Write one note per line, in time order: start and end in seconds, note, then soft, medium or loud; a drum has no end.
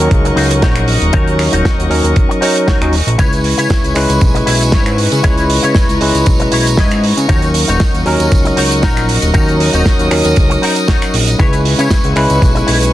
0.00 1.11 F#3 medium
0.00 1.11 C#4 medium
0.00 1.11 D#4 medium
0.00 1.12 A#4 loud
0.00 3.15 A#4 medium
0.00 3.15 D#5 medium
0.00 3.15 F#5 medium
0.00 3.15 C#6 medium
0.11 0.33 C#2 medium
0.11 kick loud
0.11 closed hi-hat medium
0.25 muted clean electric guitar stroke loud
0.25 closed hi-hat soft
0.36 0.64 C#2 medium
0.36 0.50 D#4 medium
0.36 0.51 F#4 medium
0.36 0.51 G#4 medium
0.36 open hi-hat medium
0.51 closed hi-hat medium
0.62 0.98 A#1 loud
0.62 0.88 D#4 medium
0.62 0.88 F#4 medium
0.62 0.89 C#5 medium
0.62 kick medium
0.62 snare loud
0.62 closed hi-hat medium
0.76 finger snap medium
0.76 closed hi-hat soft
0.88 open hi-hat medium
1.02 1.12 D#1 medium
1.02 closed hi-hat medium
1.13 1.49 D#2 loud
1.13 1.87 F#3 medium
1.13 1.88 C#4 medium
1.13 1.33 D#4 loud
1.13 1.88 D#4 medium
1.13 1.34 F#4 medium
1.13 1.88 A#4 loud
1.13 1.34 C#5 loud
1.13 kick loud
1.13 closed hi-hat medium
1.28 closed hi-hat soft
1.39 finger snap medium
1.39 open hi-hat loud
1.52 1.63 D#1 medium
1.52 1.90 D#4 medium
1.52 1.91 F#4 medium
1.52 1.91 C#5 medium
1.52 closed hi-hat medium
1.65 kick loud
1.65 snare loud
1.65 closed hi-hat medium
1.78 1.88 D#2 medium
1.78 closed hi-hat soft
1.90 2.02 D#2 medium
1.90 2.39 F#3 medium
1.90 2.39 C#4 medium
1.90 2.40 D#4 medium
1.90 2.40 A#4 medium
1.90 open hi-hat medium
2.04 2.14 D#2 loud
2.04 closed hi-hat medium
2.16 kick loud
2.16 closed hi-hat medium
2.29 muted clean electric guitar stroke loud
2.29 closed hi-hat soft
2.41 2.78 F#3 medium
2.41 2.78 C#4 medium
2.41 2.55 D#4 medium
2.41 2.78 D#4 medium
2.41 2.56 F#4 medium
2.41 2.78 A#4 medium
2.41 2.56 C#5 medium
2.41 open hi-hat loud
2.56 closed hi-hat medium
2.67 2.93 D#4 medium
2.67 2.93 F#4 medium
2.67 2.94 C#5 medium
2.67 kick medium
2.67 snare loud
2.67 closed hi-hat medium
2.81 3.02 D#1 medium
2.81 2.94 F#3 medium
2.81 2.94 C#4 medium
2.81 2.94 D#4 medium
2.81 2.94 D#5 medium
2.81 finger snap medium
2.81 closed hi-hat soft
2.93 open hi-hat medium
3.07 3.17 A#1 medium
3.07 closed hi-hat medium
3.18 3.54 C#2 loud
3.18 3.93 G#3 medium
3.18 3.93 C#4 medium
3.18 3.38 E4 loud
3.18 3.93 E4 medium
3.18 7.25 E4 medium
3.18 3.39 B4 loud
3.18 7.26 B4 medium
3.18 3.94 B4 medium
3.18 3.39 C#5 loud
3.18 5.22 G#5 medium
3.18 9.31 C#6 medium
3.18 kick loud
3.18 closed hi-hat medium
3.18 tambourine medium
3.33 closed hi-hat soft
3.33 tambourine soft
3.44 open hi-hat loud
3.58 3.68 C#3 medium
3.58 3.96 E4 medium
3.58 3.96 B4 medium
3.58 3.96 C#5 medium
3.58 closed hi-hat medium
3.58 tambourine medium
3.70 kick loud
3.70 snare loud
3.70 closed hi-hat medium
3.70 tambourine medium
3.84 3.94 C#2 medium
3.84 closed hi-hat soft
3.84 tambourine soft
3.95 4.07 C#2 medium
3.95 5.21 G#3 medium
3.95 5.21 C#4 medium
3.95 5.21 E4 medium
3.95 5.22 B4 loud
3.95 finger snap medium
3.95 open hi-hat loud
4.09 4.19 C#2 loud
4.09 closed hi-hat medium
4.09 tambourine medium
4.21 4.43 B1 medium
4.21 kick loud
4.21 closed hi-hat medium
4.21 tambourine medium
4.34 muted clean electric guitar stroke loud
4.34 closed hi-hat soft
4.34 tambourine soft
4.46 4.74 B1 medium
4.46 4.61 E4 medium
4.46 4.61 B4 medium
4.46 4.62 E5 medium
4.46 open hi-hat loud
4.61 closed hi-hat medium
4.61 tambourine medium
4.72 5.08 G#2 loud
4.72 4.98 E4 medium
4.72 4.99 B4 medium
4.72 4.99 C#5 medium
4.72 kick loud
4.72 snare loud
4.72 closed hi-hat medium
4.72 tambourine medium
4.86 finger snap medium
4.86 closed hi-hat soft
4.86 tambourine soft
4.98 open hi-hat loud
5.12 5.22 C#3 medium
5.12 closed hi-hat medium
5.12 tambourine medium
5.23 5.59 C#2 loud
5.23 5.98 G#3 medium
5.23 5.98 C#4 medium
5.23 5.43 E4 loud
5.23 5.98 E4 medium
5.23 5.44 B4 loud
5.23 5.99 B4 loud
5.23 5.44 C#5 loud
5.23 7.28 A#5 medium
5.23 kick loud
5.23 closed hi-hat medium
5.23 tambourine medium
5.38 closed hi-hat soft
5.38 tambourine soft
5.50 open hi-hat loud
5.63 5.73 C#3 medium
5.63 6.01 E4 medium
5.63 6.01 B4 medium
5.63 6.02 C#5 medium
5.63 closed hi-hat medium
5.63 tambourine medium
5.75 kick loud
5.75 snare loud
5.75 closed hi-hat medium
5.75 tambourine medium
5.89 5.99 C#2 loud
5.89 closed hi-hat soft
5.89 tambourine soft
6.00 6.12 C#2 medium
6.00 7.26 G#3 medium
6.00 7.26 C#4 medium
6.00 7.27 E4 medium
6.00 7.27 B4 medium
6.00 open hi-hat loud
6.15 6.24 C#2 loud
6.15 closed hi-hat medium
6.15 tambourine medium
6.26 6.48 B1 medium
6.26 kick loud
6.26 closed hi-hat medium
6.26 tambourine medium
6.40 muted clean electric guitar stroke loud
6.40 closed hi-hat soft
6.40 tambourine soft
6.52 6.80 B1 medium
6.52 6.66 E4 medium
6.52 6.66 B4 medium
6.52 6.67 C#5 medium
6.52 open hi-hat loud
6.67 closed hi-hat medium
6.67 tambourine medium
6.77 7.13 G#2 loud
6.77 7.03 E4 medium
6.77 7.04 B4 medium
6.77 7.04 D#5 medium
6.77 kick loud
6.77 snare loud
6.77 closed hi-hat medium
6.91 finger snap medium
6.91 closed hi-hat soft
6.91 tambourine soft
7.04 open hi-hat medium
7.17 7.27 C#3 medium
7.17 closed hi-hat medium
7.17 tambourine medium
7.28 7.65 D#2 loud
7.28 8.03 F#3 medium
7.28 8.03 C#4 medium
7.28 7.49 D#4 loud
7.28 8.04 D#4 medium
7.28 7.49 F#4 loud
7.28 11.35 A#4 medium
7.28 8.04 A#4 medium
7.28 7.50 C#5 loud
7.28 11.36 D#5 medium
7.28 11.35 F#5 medium
7.28 kick loud
7.28 closed hi-hat medium
7.28 tambourine medium
7.42 closed hi-hat soft
7.42 tambourine soft
7.54 open hi-hat loud
7.68 7.78 D#1 medium
7.68 8.06 D#4 medium
7.68 8.06 F#4 medium
7.68 8.07 C#5 medium
7.68 closed hi-hat medium
7.68 tambourine medium
7.80 kick loud
7.80 snare loud
7.80 closed hi-hat medium
7.80 tambourine medium
7.94 8.04 D#2 medium
7.94 closed hi-hat soft
7.94 tambourine soft
8.05 8.17 D#2 medium
8.05 9.31 F#3 medium
8.05 9.31 C#4 medium
8.05 9.32 D#4 medium
8.05 9.32 A#4 loud
8.05 open hi-hat medium
8.20 8.30 D#2 loud
8.20 closed hi-hat medium
8.20 tambourine medium
8.32 8.53 C#2 medium
8.32 kick loud
8.32 closed hi-hat medium
8.32 tambourine medium
8.45 muted clean electric guitar stroke loud
8.45 closed hi-hat soft
8.45 tambourine soft
8.57 8.85 C#2 medium
8.57 8.71 D#4 medium
8.57 8.71 F#4 medium
8.57 8.72 C#5 medium
8.57 open hi-hat loud
8.71 closed hi-hat medium
8.71 tambourine medium
8.82 9.19 A#1 loud
8.82 9.08 D#4 medium
8.82 9.09 F#4 medium
8.82 9.09 A#4 medium
8.82 kick loud
8.82 snare loud
8.82 closed hi-hat medium
8.82 tambourine medium
8.97 finger snap medium
8.97 closed hi-hat soft
8.97 tambourine soft
9.09 open hi-hat loud
9.22 9.32 D#1 medium
9.22 closed hi-hat medium
9.22 tambourine medium
9.34 9.70 D#2 loud
9.34 10.08 F#3 medium
9.34 10.08 C#4 medium
9.34 9.54 D#4 loud
9.34 10.09 D#4 medium
9.34 9.54 F#4 loud
9.34 10.09 A#4 medium
9.34 9.55 C#5 loud
9.34 11.38 D#6 medium
9.34 kick loud
9.34 closed hi-hat medium
9.34 tambourine medium
9.48 closed hi-hat soft
9.48 tambourine soft
9.60 open hi-hat loud
9.73 9.83 D#1 medium
9.73 10.11 D#4 medium
9.73 10.11 F#4 medium
9.73 10.12 C#5 medium
9.73 closed hi-hat medium
9.73 tambourine medium
9.86 kick loud
9.86 snare loud
9.86 closed hi-hat medium
9.86 tambourine medium
9.99 10.09 D#2 medium
9.99 closed hi-hat soft
9.99 tambourine soft
10.10 10.23 D#2 medium
10.10 11.36 F#3 medium
10.10 11.37 C#4 medium
10.10 11.37 D#4 medium
10.10 11.37 A#4 medium
10.10 finger snap medium
10.10 open hi-hat loud
10.25 10.35 D#2 loud
10.25 closed hi-hat medium
10.25 tambourine medium
10.36 10.58 C#2 medium
10.36 kick loud
10.36 closed hi-hat medium
10.36 tambourine medium
10.50 muted clean electric guitar stroke loud
10.50 closed hi-hat soft
10.50 tambourine soft
10.62 10.76 D#4 medium
10.62 10.77 F#4 medium
10.62 10.77 A#4 medium
10.62 open hi-hat loud
10.76 closed hi-hat medium
10.76 tambourine medium
10.88 11.14 D#4 medium
10.88 11.14 F#4 medium
10.88 11.14 C#5 medium
10.88 kick loud
10.88 snare loud
10.88 closed hi-hat medium
10.88 tambourine medium
11.02 finger snap medium
11.02 closed hi-hat soft
11.02 tambourine soft
11.14 11.35 A#1 medium
11.14 open hi-hat loud
11.28 closed hi-hat medium
11.28 tambourine medium
11.38 11.75 C#2 loud
11.38 12.13 G#3 medium
11.38 12.13 C#4 medium
11.38 11.59 E4 loud
11.38 12.93 E4 medium
11.38 12.14 E4 medium
11.38 12.93 B4 medium
11.38 11.59 B4 loud
11.38 12.14 B4 medium
11.38 11.60 C#5 loud
11.38 12.93 G#5 medium
11.38 12.93 C#6 medium
11.38 kick loud
11.38 closed hi-hat medium
11.38 tambourine medium
11.53 closed hi-hat soft
11.53 tambourine soft
11.65 open hi-hat loud
11.78 11.88 C#3 medium
11.78 12.16 E4 medium
11.78 12.17 B4 medium
11.78 12.17 C#5 loud
11.78 closed hi-hat medium
11.78 tambourine medium
11.91 kick loud
11.91 snare loud
11.91 closed hi-hat medium
11.91 tambourine medium
12.04 12.14 C#2 medium
12.04 closed hi-hat soft
12.04 tambourine soft
12.15 12.28 C#2 medium
12.15 12.93 G#3 medium
12.15 12.93 C#4 medium
12.15 12.93 E4 medium
12.15 12.93 B4 loud
12.15 finger snap medium
12.15 open hi-hat medium
12.30 12.40 C#2 loud
12.30 closed hi-hat medium
12.30 tambourine medium
12.42 12.63 B1 medium
12.42 kick loud
12.42 closed hi-hat medium
12.42 tambourine medium
12.55 muted clean electric guitar stroke loud
12.55 closed hi-hat soft
12.55 tambourine soft
12.67 12.93 B1 medium
12.67 12.81 E4 medium
12.67 12.82 B4 medium
12.67 12.82 C#5 medium
12.67 open hi-hat loud
12.81 closed hi-hat medium
12.81 tambourine medium